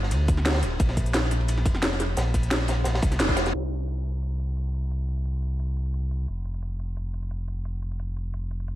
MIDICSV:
0, 0, Header, 1, 3, 480
1, 0, Start_track
1, 0, Tempo, 342857
1, 1116, Time_signature, 4, 2, 24, 8
1, 12256, End_track
2, 0, Start_track
2, 0, Title_t, "Sub bass"
2, 0, Program_c, 0, 38
2, 0, Note_on_c, 0, 31, 99
2, 153, Note_on_c, 0, 38, 111
2, 174, Note_off_c, 0, 31, 0
2, 876, Note_on_c, 0, 26, 88
2, 897, Note_off_c, 0, 38, 0
2, 1093, Note_off_c, 0, 26, 0
2, 1117, Note_on_c, 0, 34, 103
2, 2317, Note_on_c, 0, 29, 89
2, 2338, Note_off_c, 0, 34, 0
2, 3019, Note_off_c, 0, 29, 0
2, 3037, Note_on_c, 0, 34, 96
2, 3979, Note_off_c, 0, 34, 0
2, 3995, Note_on_c, 0, 34, 86
2, 4213, Note_off_c, 0, 34, 0
2, 4237, Note_on_c, 0, 36, 85
2, 4476, Note_on_c, 0, 29, 106
2, 4497, Note_off_c, 0, 36, 0
2, 4938, Note_off_c, 0, 29, 0
2, 4955, Note_on_c, 0, 36, 86
2, 8773, Note_off_c, 0, 36, 0
2, 8799, Note_on_c, 0, 29, 87
2, 12256, Note_off_c, 0, 29, 0
2, 12256, End_track
3, 0, Start_track
3, 0, Title_t, "Drums"
3, 44, Note_on_c, 9, 38, 58
3, 156, Note_on_c, 9, 42, 95
3, 163, Note_on_c, 9, 51, 90
3, 184, Note_off_c, 9, 38, 0
3, 296, Note_off_c, 9, 42, 0
3, 303, Note_off_c, 9, 51, 0
3, 391, Note_on_c, 9, 51, 65
3, 396, Note_on_c, 9, 42, 65
3, 397, Note_on_c, 9, 36, 105
3, 523, Note_on_c, 9, 40, 35
3, 531, Note_off_c, 9, 51, 0
3, 536, Note_off_c, 9, 42, 0
3, 537, Note_off_c, 9, 36, 0
3, 632, Note_on_c, 9, 51, 64
3, 638, Note_on_c, 9, 38, 117
3, 638, Note_on_c, 9, 42, 89
3, 647, Note_off_c, 9, 38, 0
3, 647, Note_on_c, 9, 38, 95
3, 663, Note_off_c, 9, 40, 0
3, 706, Note_off_c, 9, 51, 0
3, 706, Note_on_c, 9, 51, 65
3, 707, Note_off_c, 9, 38, 0
3, 707, Note_on_c, 9, 38, 95
3, 759, Note_off_c, 9, 51, 0
3, 759, Note_on_c, 9, 51, 89
3, 769, Note_off_c, 9, 38, 0
3, 769, Note_on_c, 9, 38, 121
3, 778, Note_off_c, 9, 42, 0
3, 876, Note_off_c, 9, 51, 0
3, 876, Note_on_c, 9, 51, 73
3, 878, Note_on_c, 9, 42, 67
3, 909, Note_off_c, 9, 38, 0
3, 1016, Note_off_c, 9, 51, 0
3, 1018, Note_off_c, 9, 42, 0
3, 1113, Note_on_c, 9, 51, 84
3, 1117, Note_on_c, 9, 36, 119
3, 1118, Note_on_c, 9, 42, 97
3, 1244, Note_on_c, 9, 40, 32
3, 1247, Note_on_c, 9, 38, 44
3, 1253, Note_off_c, 9, 51, 0
3, 1257, Note_off_c, 9, 36, 0
3, 1258, Note_off_c, 9, 42, 0
3, 1357, Note_on_c, 9, 36, 60
3, 1358, Note_on_c, 9, 42, 72
3, 1359, Note_on_c, 9, 51, 65
3, 1384, Note_off_c, 9, 40, 0
3, 1387, Note_off_c, 9, 38, 0
3, 1486, Note_off_c, 9, 42, 0
3, 1486, Note_on_c, 9, 42, 41
3, 1497, Note_off_c, 9, 36, 0
3, 1499, Note_off_c, 9, 51, 0
3, 1593, Note_on_c, 9, 51, 75
3, 1598, Note_off_c, 9, 42, 0
3, 1598, Note_on_c, 9, 38, 113
3, 1598, Note_on_c, 9, 42, 100
3, 1599, Note_off_c, 9, 38, 0
3, 1599, Note_on_c, 9, 38, 110
3, 1733, Note_off_c, 9, 51, 0
3, 1738, Note_off_c, 9, 42, 0
3, 1739, Note_off_c, 9, 38, 0
3, 1833, Note_on_c, 9, 51, 74
3, 1836, Note_on_c, 9, 40, 33
3, 1836, Note_on_c, 9, 42, 65
3, 1968, Note_off_c, 9, 51, 0
3, 1968, Note_on_c, 9, 51, 46
3, 1976, Note_off_c, 9, 40, 0
3, 1976, Note_off_c, 9, 42, 0
3, 2077, Note_on_c, 9, 42, 98
3, 2082, Note_off_c, 9, 51, 0
3, 2082, Note_on_c, 9, 51, 91
3, 2206, Note_on_c, 9, 40, 35
3, 2217, Note_off_c, 9, 42, 0
3, 2222, Note_off_c, 9, 51, 0
3, 2318, Note_on_c, 9, 36, 101
3, 2318, Note_on_c, 9, 42, 67
3, 2325, Note_on_c, 9, 51, 64
3, 2346, Note_off_c, 9, 40, 0
3, 2444, Note_on_c, 9, 40, 36
3, 2458, Note_off_c, 9, 36, 0
3, 2458, Note_off_c, 9, 42, 0
3, 2465, Note_off_c, 9, 51, 0
3, 2555, Note_on_c, 9, 38, 118
3, 2555, Note_on_c, 9, 42, 99
3, 2558, Note_off_c, 9, 38, 0
3, 2558, Note_on_c, 9, 38, 113
3, 2561, Note_on_c, 9, 51, 84
3, 2584, Note_off_c, 9, 40, 0
3, 2690, Note_off_c, 9, 38, 0
3, 2690, Note_on_c, 9, 38, 45
3, 2695, Note_off_c, 9, 42, 0
3, 2701, Note_off_c, 9, 51, 0
3, 2798, Note_off_c, 9, 38, 0
3, 2798, Note_on_c, 9, 38, 36
3, 2798, Note_on_c, 9, 42, 68
3, 2938, Note_off_c, 9, 38, 0
3, 2938, Note_off_c, 9, 42, 0
3, 3036, Note_on_c, 9, 42, 99
3, 3042, Note_on_c, 9, 38, 110
3, 3053, Note_on_c, 9, 51, 77
3, 3176, Note_off_c, 9, 42, 0
3, 3182, Note_off_c, 9, 38, 0
3, 3193, Note_off_c, 9, 51, 0
3, 3277, Note_on_c, 9, 36, 64
3, 3278, Note_on_c, 9, 42, 70
3, 3285, Note_on_c, 9, 51, 70
3, 3404, Note_off_c, 9, 42, 0
3, 3404, Note_on_c, 9, 42, 41
3, 3417, Note_off_c, 9, 36, 0
3, 3425, Note_off_c, 9, 51, 0
3, 3515, Note_off_c, 9, 42, 0
3, 3515, Note_on_c, 9, 38, 121
3, 3515, Note_on_c, 9, 42, 105
3, 3515, Note_on_c, 9, 51, 95
3, 3516, Note_off_c, 9, 38, 0
3, 3516, Note_on_c, 9, 38, 120
3, 3655, Note_off_c, 9, 42, 0
3, 3655, Note_off_c, 9, 51, 0
3, 3656, Note_off_c, 9, 38, 0
3, 3749, Note_on_c, 9, 51, 80
3, 3755, Note_on_c, 9, 40, 35
3, 3755, Note_on_c, 9, 42, 72
3, 3765, Note_on_c, 9, 38, 105
3, 3889, Note_off_c, 9, 51, 0
3, 3895, Note_off_c, 9, 40, 0
3, 3895, Note_off_c, 9, 42, 0
3, 3905, Note_off_c, 9, 38, 0
3, 3980, Note_on_c, 9, 38, 99
3, 3994, Note_on_c, 9, 42, 96
3, 3997, Note_on_c, 9, 51, 80
3, 4120, Note_off_c, 9, 38, 0
3, 4127, Note_on_c, 9, 38, 106
3, 4132, Note_off_c, 9, 51, 0
3, 4132, Note_on_c, 9, 51, 83
3, 4134, Note_off_c, 9, 42, 0
3, 4229, Note_off_c, 9, 51, 0
3, 4229, Note_on_c, 9, 51, 78
3, 4237, Note_on_c, 9, 36, 110
3, 4237, Note_on_c, 9, 42, 72
3, 4267, Note_off_c, 9, 38, 0
3, 4353, Note_on_c, 9, 38, 41
3, 4364, Note_off_c, 9, 42, 0
3, 4364, Note_on_c, 9, 40, 35
3, 4364, Note_on_c, 9, 42, 40
3, 4369, Note_off_c, 9, 51, 0
3, 4377, Note_off_c, 9, 36, 0
3, 4477, Note_off_c, 9, 38, 0
3, 4477, Note_off_c, 9, 42, 0
3, 4477, Note_on_c, 9, 38, 115
3, 4477, Note_on_c, 9, 42, 96
3, 4483, Note_on_c, 9, 51, 57
3, 4504, Note_off_c, 9, 40, 0
3, 4603, Note_off_c, 9, 51, 0
3, 4603, Note_on_c, 9, 36, 61
3, 4603, Note_on_c, 9, 51, 79
3, 4617, Note_off_c, 9, 38, 0
3, 4617, Note_off_c, 9, 42, 0
3, 4708, Note_off_c, 9, 51, 0
3, 4708, Note_on_c, 9, 51, 90
3, 4714, Note_on_c, 9, 38, 115
3, 4716, Note_on_c, 9, 42, 71
3, 4743, Note_off_c, 9, 36, 0
3, 4841, Note_off_c, 9, 42, 0
3, 4841, Note_on_c, 9, 42, 40
3, 4847, Note_off_c, 9, 51, 0
3, 4847, Note_on_c, 9, 51, 78
3, 4848, Note_off_c, 9, 38, 0
3, 4848, Note_on_c, 9, 38, 103
3, 4954, Note_off_c, 9, 42, 0
3, 4954, Note_on_c, 9, 42, 88
3, 4987, Note_off_c, 9, 51, 0
3, 4988, Note_off_c, 9, 38, 0
3, 5094, Note_off_c, 9, 42, 0
3, 5195, Note_on_c, 9, 42, 66
3, 5322, Note_off_c, 9, 42, 0
3, 5322, Note_on_c, 9, 42, 37
3, 5435, Note_off_c, 9, 42, 0
3, 5435, Note_on_c, 9, 42, 89
3, 5575, Note_off_c, 9, 42, 0
3, 5675, Note_on_c, 9, 42, 61
3, 5815, Note_off_c, 9, 42, 0
3, 5915, Note_on_c, 9, 42, 92
3, 6055, Note_off_c, 9, 42, 0
3, 6155, Note_on_c, 9, 42, 62
3, 6283, Note_off_c, 9, 42, 0
3, 6283, Note_on_c, 9, 42, 34
3, 6397, Note_off_c, 9, 42, 0
3, 6397, Note_on_c, 9, 42, 86
3, 6537, Note_off_c, 9, 42, 0
3, 6639, Note_on_c, 9, 42, 65
3, 6779, Note_off_c, 9, 42, 0
3, 6879, Note_on_c, 9, 42, 83
3, 7019, Note_off_c, 9, 42, 0
3, 7118, Note_on_c, 9, 42, 61
3, 7242, Note_off_c, 9, 42, 0
3, 7242, Note_on_c, 9, 42, 35
3, 7356, Note_off_c, 9, 42, 0
3, 7356, Note_on_c, 9, 42, 87
3, 7496, Note_off_c, 9, 42, 0
3, 7596, Note_on_c, 9, 42, 59
3, 7736, Note_off_c, 9, 42, 0
3, 7835, Note_on_c, 9, 42, 91
3, 7975, Note_off_c, 9, 42, 0
3, 8075, Note_on_c, 9, 42, 62
3, 8204, Note_off_c, 9, 42, 0
3, 8204, Note_on_c, 9, 42, 35
3, 8315, Note_off_c, 9, 42, 0
3, 8315, Note_on_c, 9, 42, 84
3, 8455, Note_off_c, 9, 42, 0
3, 8556, Note_on_c, 9, 42, 60
3, 8696, Note_off_c, 9, 42, 0
3, 8794, Note_on_c, 9, 42, 80
3, 8934, Note_off_c, 9, 42, 0
3, 9035, Note_on_c, 9, 42, 61
3, 9160, Note_off_c, 9, 42, 0
3, 9160, Note_on_c, 9, 42, 34
3, 9275, Note_off_c, 9, 42, 0
3, 9275, Note_on_c, 9, 42, 87
3, 9415, Note_off_c, 9, 42, 0
3, 9516, Note_on_c, 9, 42, 56
3, 9656, Note_off_c, 9, 42, 0
3, 9756, Note_on_c, 9, 42, 83
3, 9896, Note_off_c, 9, 42, 0
3, 9995, Note_on_c, 9, 42, 60
3, 10121, Note_off_c, 9, 42, 0
3, 10121, Note_on_c, 9, 42, 36
3, 10233, Note_off_c, 9, 42, 0
3, 10233, Note_on_c, 9, 42, 84
3, 10373, Note_off_c, 9, 42, 0
3, 10473, Note_on_c, 9, 42, 61
3, 10613, Note_off_c, 9, 42, 0
3, 10714, Note_on_c, 9, 42, 77
3, 10854, Note_off_c, 9, 42, 0
3, 10954, Note_on_c, 9, 42, 59
3, 11083, Note_off_c, 9, 42, 0
3, 11083, Note_on_c, 9, 42, 32
3, 11195, Note_off_c, 9, 42, 0
3, 11195, Note_on_c, 9, 42, 84
3, 11335, Note_off_c, 9, 42, 0
3, 11434, Note_on_c, 9, 42, 55
3, 11574, Note_off_c, 9, 42, 0
3, 11674, Note_on_c, 9, 42, 78
3, 11814, Note_off_c, 9, 42, 0
3, 11915, Note_on_c, 9, 42, 60
3, 12041, Note_off_c, 9, 42, 0
3, 12041, Note_on_c, 9, 42, 34
3, 12153, Note_off_c, 9, 42, 0
3, 12153, Note_on_c, 9, 42, 82
3, 12256, Note_off_c, 9, 42, 0
3, 12256, End_track
0, 0, End_of_file